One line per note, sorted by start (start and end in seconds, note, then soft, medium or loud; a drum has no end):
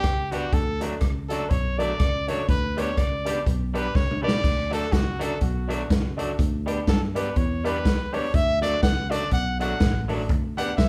0.00 0.33 G4 loud
0.00 kick loud
0.00 cross-stick loud
0.00 closed hi-hat medium
0.04 0.46 C#2 loud
0.31 0.44 G3 medium
0.31 0.44 B3 medium
0.31 0.43 D4 medium
0.31 0.44 D4 medium
0.31 0.55 F#4 loud
0.31 0.43 G4 medium
0.31 0.45 G4 medium
0.31 0.43 B4 medium
0.31 0.43 D5 medium
0.31 closed hi-hat medium
0.52 0.94 D2 loud
0.52 0.82 A4 loud
0.52 kick loud
0.52 closed hi-hat medium
0.80 0.93 F#3 medium
0.80 0.93 A3 medium
0.80 0.91 D4 medium
0.80 0.94 D4 medium
0.80 0.92 F#4 medium
0.80 0.94 F#4 medium
0.80 0.92 A4 medium
0.80 0.92 D5 loud
0.80 closed hi-hat loud
1.01 1.43 C#2 medium
1.01 kick loud
1.01 cross-stick loud
1.01 closed hi-hat medium
1.29 1.42 F#3 medium
1.29 1.43 A3 medium
1.29 1.40 D4 medium
1.29 1.43 D4 medium
1.29 1.41 F#4 medium
1.29 1.51 A4 loud
1.29 1.41 A4 medium
1.29 1.41 D5 loud
1.29 closed hi-hat loud
1.33 1.43 F#4 medium
1.50 1.92 B1 medium
1.50 1.80 C#5 loud
1.50 kick loud
1.50 closed hi-hat medium
1.78 1.91 F#3 medium
1.78 1.91 A3 loud
1.78 1.89 D4 loud
1.78 1.91 D4 medium
1.78 1.89 F#4 medium
1.78 1.92 F#4 medium
1.78 1.89 A4 medium
1.78 1.90 D5 loud
1.78 2.30 D5 loud
1.78 closed hi-hat medium
1.99 2.41 C#2 medium
1.99 kick loud
1.99 cross-stick loud
1.99 closed hi-hat medium
2.27 2.40 F#3 medium
2.27 2.40 A3 medium
2.27 2.38 D4 medium
2.27 2.40 D4 medium
2.27 2.38 F#4 medium
2.27 2.41 F#4 medium
2.27 2.39 A4 medium
2.27 2.49 C#5 loud
2.27 2.39 D5 loud
2.27 closed hi-hat medium
2.49 2.90 D2 loud
2.49 2.81 B4 loud
2.49 kick loud
2.49 closed hi-hat medium
2.76 2.89 G3 medium
2.76 2.89 B3 loud
2.76 2.87 D4 medium
2.76 2.89 D4 medium
2.76 2.87 G4 medium
2.76 2.90 G4 loud
2.76 2.87 B4 medium
2.76 3.00 C#5 loud
2.76 2.88 D5 loud
2.76 closed hi-hat medium
2.97 3.39 C#2 medium
2.97 3.47 D5 medium
2.97 kick loud
2.97 cross-stick loud
2.97 closed hi-hat medium
3.25 3.37 G3 medium
3.25 3.38 B3 medium
3.25 3.36 D4 medium
3.25 3.38 D4 medium
3.25 3.36 G4 medium
3.25 3.38 G4 medium
3.25 3.36 B4 medium
3.25 3.36 D5 loud
3.25 cross-stick medium
3.25 closed hi-hat loud
3.46 3.88 B1 medium
3.46 kick loud
3.46 closed hi-hat medium
3.73 3.86 G3 medium
3.73 3.86 B3 loud
3.73 3.85 D4 medium
3.73 3.86 D4 medium
3.73 3.85 G4 medium
3.73 3.87 G4 loud
3.73 3.85 B4 medium
3.73 3.97 B4 loud
3.73 3.85 D5 loud
3.73 closed hi-hat medium
3.95 4.36 C#2 loud
3.95 4.23 C#5 loud
3.95 kick loud
3.95 snare medium
4.11 mid tom medium
4.22 4.34 G3 medium
4.22 4.35 B3 medium
4.22 4.34 D4 medium
4.22 4.35 D4 medium
4.22 4.34 G4 medium
4.22 4.35 G4 medium
4.22 4.34 B4 medium
4.22 4.69 D5 loud
4.22 4.34 D5 loud
4.28 snare loud
4.44 4.85 D2 loud
4.44 kick loud
4.44 crash medium
4.71 4.83 F#3 medium
4.71 4.83 A3 medium
4.71 4.82 D4 medium
4.71 4.84 D4 medium
4.71 4.82 F#4 medium
4.71 4.84 F#4 medium
4.71 4.82 A4 medium
4.71 4.94 A4 loud
4.71 4.82 D5 loud
4.71 closed hi-hat loud
4.92 5.34 C#2 medium
4.92 5.25 F#4 loud
4.92 kick loud
4.92 snare loud
4.92 closed hi-hat medium
5.19 5.32 F#3 medium
5.19 5.32 A3 medium
5.19 5.31 D4 medium
5.19 5.32 D4 medium
5.19 5.31 F#4 medium
5.19 5.33 F#4 loud
5.19 5.31 A4 medium
5.19 5.41 A4 loud
5.19 5.32 D5 loud
5.19 closed hi-hat loud
5.41 5.83 B1 loud
5.41 6.15 F#4 medium
5.41 kick loud
5.41 closed hi-hat medium
5.68 5.81 F#3 loud
5.68 5.81 A3 loud
5.68 5.79 D4 medium
5.68 5.82 D4 loud
5.68 5.80 F#4 medium
5.68 5.82 F#4 medium
5.68 5.80 A4 medium
5.68 5.80 D5 loud
5.68 closed hi-hat medium
5.90 6.32 C#2 medium
5.90 kick loud
5.90 snare loud
5.90 closed hi-hat medium
6.17 6.30 F#3 medium
6.17 6.30 A3 medium
6.17 6.28 D4 medium
6.17 6.30 D4 medium
6.17 6.28 F#4 medium
6.17 6.31 F#4 medium
6.17 6.29 A4 medium
6.17 6.29 D5 loud
6.17 closed hi-hat loud
6.39 6.81 D2 loud
6.39 kick loud
6.39 closed hi-hat medium
6.66 6.78 G3 medium
6.66 6.79 B3 medium
6.66 6.77 D4 medium
6.66 6.79 D4 medium
6.66 6.77 G4 medium
6.66 6.79 G4 medium
6.66 6.78 B4 medium
6.66 6.78 D5 loud
6.66 closed hi-hat medium
6.87 7.29 G2 medium
6.87 7.01 A4 medium
6.87 kick loud
6.87 snare loud
6.87 closed hi-hat medium
7.14 7.27 G3 medium
7.14 7.28 B3 medium
7.14 7.26 D4 medium
7.14 7.28 D4 medium
7.14 7.26 G4 medium
7.14 7.28 G4 medium
7.14 7.26 B4 medium
7.14 7.39 B4 medium
7.14 7.27 D5 loud
7.14 closed hi-hat loud
7.36 7.85 E2 loud
7.36 7.66 C#5 medium
7.36 kick loud
7.36 closed hi-hat medium
7.64 7.76 G3 loud
7.64 7.77 B3 loud
7.64 7.75 D4 medium
7.64 7.77 D4 loud
7.64 7.75 G4 medium
7.64 7.77 G4 loud
7.64 7.75 B4 medium
7.64 8.15 B4 loud
7.64 7.76 D5 loud
7.64 closed hi-hat medium
7.85 8.27 D2 loud
7.85 kick loud
7.85 snare loud
7.85 closed hi-hat medium
8.12 8.25 G3 medium
8.12 8.25 B3 medium
8.12 8.24 D4 medium
8.12 8.26 D4 medium
8.12 8.24 G4 medium
8.12 8.26 G4 medium
8.12 8.24 B4 medium
8.12 8.36 C#5 loud
8.12 8.24 D5 loud
8.12 open hi-hat medium
8.34 8.76 D2 loud
8.34 8.61 E5 loud
8.34 kick loud
8.34 closed hi-hat loud
8.61 8.74 F#3 medium
8.61 8.74 A3 medium
8.61 8.73 D4 loud
8.61 8.74 D4 medium
8.61 8.73 F#4 medium
8.61 8.75 F#4 loud
8.61 8.73 A4 medium
8.61 8.81 D5 loud
8.61 8.73 D5 loud
8.61 closed hi-hat medium
8.83 9.24 C#2 loud
8.83 9.12 F#5 loud
8.83 kick loud
8.83 snare loud
8.83 closed hi-hat medium
9.10 9.23 F#3 loud
9.10 9.23 A3 loud
9.10 9.21 D4 loud
9.10 9.23 D4 loud
9.10 9.22 F#4 medium
9.10 9.24 F#4 medium
9.10 9.22 A4 medium
9.10 9.22 D5 loud
9.10 9.32 D5 loud
9.10 closed hi-hat loud
9.31 9.73 B1 loud
9.31 9.59 F#5 loud
9.31 kick loud
9.31 closed hi-hat medium
9.59 9.72 F#3 medium
9.59 9.73 A3 loud
9.59 9.71 D4 loud
9.59 9.72 D4 loud
9.59 9.71 F#4 medium
9.59 9.73 F#4 loud
9.59 9.71 A4 medium
9.59 9.71 D5 loud
9.59 10.06 F#5 loud
9.59 closed hi-hat medium
9.80 10.30 A1 loud
9.80 kick loud
9.80 snare loud
9.80 closed hi-hat medium
10.08 10.20 F#3 medium
10.08 10.21 A3 medium
10.08 10.19 D4 medium
10.08 10.21 D4 medium
10.08 10.20 F#4 medium
10.08 10.21 F#4 medium
10.08 10.20 A4 medium
10.08 10.20 D5 loud
10.08 open hi-hat medium
10.29 10.71 D2 loud
10.29 kick loud
10.29 closed hi-hat medium
10.57 10.69 G3 medium
10.57 10.70 B3 medium
10.57 10.68 D4 medium
10.57 10.70 D4 medium
10.57 10.69 G4 medium
10.57 10.70 G4 medium
10.57 10.69 B4 medium
10.57 10.69 D5 loud
10.57 10.77 F#5 loud
10.57 closed hi-hat loud
10.77 10.89 B1 loud
10.77 10.89 E5 loud
10.77 kick loud
10.77 snare loud
10.77 closed hi-hat medium